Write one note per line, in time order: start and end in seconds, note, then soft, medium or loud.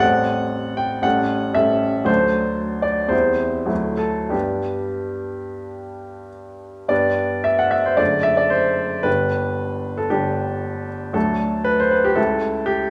0.00 1.00 A1 soft
0.00 1.00 G3 soft
0.00 1.00 C4 soft
0.00 1.01 A4 soft
0.00 0.78 F#5 medium
0.77 1.03 G5 medium
1.02 1.51 A1 soft
1.02 1.53 G3 soft
1.02 1.54 C#4 soft
1.02 1.54 A4 soft
1.02 1.55 F#5 medium
1.53 2.05 A1 soft
1.53 2.06 G3 soft
1.53 2.06 C#4 soft
1.53 2.06 A4 soft
1.53 2.07 E5 medium
2.05 3.07 D2 soft
2.05 3.08 F#3 soft
2.05 3.08 D4 soft
2.05 3.09 A4 soft
2.05 2.84 C5 medium
2.82 3.11 D5 soft
3.08 3.66 E2 soft
3.08 3.66 G3 soft
3.08 3.67 C4 soft
3.08 3.67 E4 soft
3.08 3.99 C5 soft
3.66 4.29 D2 soft
3.66 4.30 F#3 soft
3.66 4.30 A3 soft
3.66 4.31 E4 soft
3.97 4.32 A4 soft
4.29 6.84 G2 soft
4.29 6.85 G3 soft
4.29 6.85 B3 soft
4.29 6.86 D4 soft
4.29 6.28 G4 soft
6.88 7.96 G2 soft
6.88 7.96 G3 soft
6.88 7.96 B3 soft
6.88 7.97 D4 soft
6.88 7.45 D5 medium
7.44 7.59 E5 medium
7.59 7.73 F#5 medium
7.71 7.85 E5 medium
7.85 7.99 C5 soft
7.97 9.01 F#1 soft
7.97 9.01 D3 soft
7.97 9.02 A3 soft
7.97 9.02 D4 soft
7.97 8.25 D5 medium
8.23 8.38 E5 medium
8.37 8.51 D5 soft
8.50 9.05 C5 medium
9.03 10.07 G1 soft
9.03 10.08 D3 soft
9.03 10.08 G3 soft
9.03 10.08 D4 soft
9.03 9.98 B4 medium
9.98 10.11 A4 soft
10.10 11.11 G1 soft
10.10 11.11 D3 soft
10.10 11.12 G3 soft
10.10 11.12 D4 soft
10.10 10.88 G4 soft
11.13 12.13 D2 soft
11.13 12.14 F#3 soft
11.13 12.14 A3 soft
11.13 12.14 D4 soft
11.13 11.67 A4 medium
11.64 11.78 B4 medium
11.80 11.92 C5 medium
11.91 12.04 B4 medium
12.05 12.17 G4 medium
12.15 12.90 C#2 soft
12.15 12.90 A3 soft
12.15 12.90 E4 soft
12.15 12.67 A4 medium
12.66 12.90 G4 medium